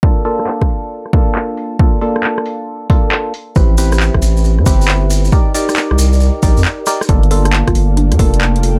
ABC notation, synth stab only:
X:1
M:4/4
L:1/16
Q:"Swing 16ths" 1/4=136
K:Bb
V:1 name="Synth stab"
[B,DFA]2 [B,DFA]8 [B,DFA]6 | [B,DFA]2 [B,DFA]8 [B,DFA]4 z2 | [C=EG=B]2 [CEGB]8 [CEGB]6 | [EGBd]2 [EGBd]8 [EGBd]2 z2 [EGBd] z |
[B,DFA]2 [B,DFA]8 [B,DFA]6 |]